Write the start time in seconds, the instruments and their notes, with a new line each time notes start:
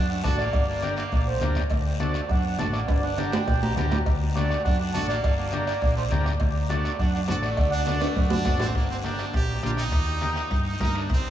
Already playing: fingered electric bass F#2
0.09 trumpet D4, accordion F#5
0.23 fingered electric bass A1, transistor combo organ D4 F#4 A4, trumpet F#4, accordion A5, bombo low, bombo rim, cowbell, high conga, low timbale, short guiro
0.38 trumpet A#3, accordion D5, bombo rim, short guiro
0.53 fingered electric bass G1, bombo low, bombo rim, cowbell, high conga, long guiro
0.67 trumpet A#3, accordion D5
0.82 transistor combo organ D4 G4 A#4, bombo rim, cowbell, high conga, short guiro
0.96 trumpet A#3, accordion D5, bombo rim, short guiro
1.12 fingered electric bass A#1, bombo low, bombo rim, cowbell, high conga, long guiro
1.27 trumpet A3, accordion C5
1.41 fingered electric bass D2, trumpet A#3, transistor combo organ D4 G4 A#4, accordion D5, bombo rim, cowbell, high conga, low conga, short guiro
1.55 bombo rim, low conga, short guiro
1.70 fingered electric bass D2, bombo low, bombo rim, cowbell, high conga, long guiro
2.00 trumpet A3, transistor combo organ D4 F#4 A4, accordion D5, bombo rim, cowbell, high conga, short guiro
2.14 bombo rim, short guiro
2.29 fingered electric bass F#2, trumpet D4, accordion F#5, bombo low, bombo rim, cowbell, high conga, long guiro
2.46 trumpet D4, accordion F#5
2.58 fingered electric bass A1, transistor combo organ D4 F#4 A4, trumpet F#4, accordion A5, bombo rim, cowbell, high conga, low timbale, short guiro
2.73 trumpet A#3, accordion D5, bombo rim, short guiro
2.88 fingered electric bass G1, bombo low, bombo rim, cowbell, high conga, high timbale, long guiro
3.03 trumpet D4, accordion F#5, high timbale
3.18 transistor combo organ D4 G4 A#4, bombo rim, cowbell, high conga, high timbale, short guiro
3.33 trumpet D4, accordion G5, bombo rim, low timbale, short guiro
3.48 fingered electric bass A#1, bombo low, bombo rim, cowbell, high conga, low timbale, long guiro
3.62 trumpet G4, accordion A#5, low timbale
3.76 fingered electric bass D2, transistor combo organ D4 G4 A#4, trumpet G4, accordion A#5, bombo rim, cowbell, high conga, low conga, low timbale, short guiro
3.91 bombo rim, low conga, low timbale, short guiro
4.06 fingered electric bass D2, bombo low, bombo rim, cowbell, high conga, long guiro
4.34 trumpet A3, transistor combo organ D4 F#4 A4, accordion D5, bombo rim, cowbell, high conga, short guiro
4.50 bombo rim, short guiro
4.64 fingered electric bass F#2, trumpet D4, accordion F#5, bombo low, bombo rim, cowbell, high conga, long guiro
4.80 trumpet D4, accordion F#5
4.93 fingered electric bass A1, transistor combo organ D4 F#4 A4, trumpet F#4, accordion A5, bombo rim, cowbell, high conga, short guiro
5.08 trumpet A#3, accordion D5, bombo rim, short guiro
5.24 fingered electric bass G1, bombo low, bombo rim, cowbell, high conga, long guiro
5.37 trumpet A#3, accordion D5
5.52 transistor combo organ D4 G4 A#4, bombo rim, cowbell, high conga, short guiro
5.66 trumpet A#3, accordion D5, bombo rim, short guiro
5.82 fingered electric bass A#1, bombo low, bombo rim, cowbell, high conga, long guiro
5.97 trumpet A3, accordion C5
6.10 fingered electric bass D2, trumpet A#3, transistor combo organ D4 G4 A#4, accordion D5, bombo rim, cowbell, high conga, low conga, short guiro
6.26 bombo rim, low conga, short guiro
6.40 fingered electric bass D2, bombo low, bombo rim, cowbell, high conga, long guiro
6.69 trumpet A3, transistor combo organ D4 F#4 A4, accordion D5, bombo rim, cowbell, high conga, short guiro
6.85 bombo rim, short guiro
6.99 fingered electric bass F#2, trumpet D4, accordion F#5, bombo low, bombo rim, cowbell, high conga, long guiro
7.14 trumpet D4, accordion F#5
7.28 fingered electric bass A1, transistor combo organ D4 F#4 A4, trumpet F#4, accordion A5, bombo rim, cowbell, high conga, low timbale, short guiro
7.42 trumpet A3, accordion D5, bombo rim, short guiro
7.57 fingered electric bass D2, bombo low, bombo rim, cowbell, high conga, long guiro
7.71 trumpet D4, accordion F#5
7.86 transistor combo organ D4 F#4 A4, bombo rim, cowbell, high conga, high timbale, short guiro
8.00 trumpet A3, accordion D5, bombo rim, high timbale, short guiro
8.16 fingered electric bass F#2, bombo low, bombo rim, cowbell, high conga, high timbale, long guiro
8.28 trumpet D4, accordion F#5, high conga, low timbale
8.44 fingered electric bass A1, transistor combo organ D4 F#4 A4, accordion F#5, bombo low, bombo rim, cowbell, high conga, low timbale, short guiro
8.60 trumpet C4, bombo rim, low conga, low timbale, short guiro
8.75 fingered electric bass G1, trumpet A#3, bombo low, bombo rim, high conga, high timbale, long guiro
8.90 trumpet C4
9.04 transistor combo organ A#3 D4 G4, trumpet D4, bombo rim, high conga, high timbale, short guiro
9.19 bombo rim, high timbale, short guiro
9.34 fingered electric bass A#1, trumpet G4, bombo low, bombo rim, high conga, high timbale, long guiro
9.63 fingered electric bass A#1, transistor combo organ A#3 D4 G4, trumpet F4, bombo rim, high conga, high timbale, short guiro
9.77 trumpet D#4, bombo rim, high timbale, short guiro
9.92 fingered electric bass D#2, bombo low, bombo rim, high conga, high timbale, long guiro
10.21 transistor combo organ A#3 D#4 G4, bombo rim, high conga, high timbale, short guiro
10.36 bombo rim, high timbale, short guiro
10.51 fingered electric bass G2, bombo low, bombo rim, high conga, high timbale, long guiro
10.68 trumpet D#4
10.80 fingered electric bass G2, transistor combo organ A#3 D#4 A#4, trumpet D#4, bombo low, bombo rim, high conga, high timbale, low timbale, short guiro
10.95 trumpet D4, bombo rim, high timbale, short guiro
11.09 fingered electric bass C2, trumpet C4, bombo low, bombo rim, high conga, high timbale, long guiro